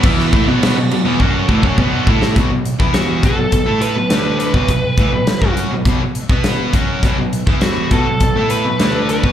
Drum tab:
CC |x-x-x-x---------|----------------|----------------|----------------|
HH |----------------|x-x-x-x-x-x-x-x-|x-x-x-x-x-x-x-x-|x-x-x-x-x-x-x-x-|
SD |-o--o----------o|----o-------o---|----o-------o---|----o-------o---|
BD |o-o-----o-ooo-o-|o--o--o-o------o|o-o--o--o--o--o-|o--o--o-o------o|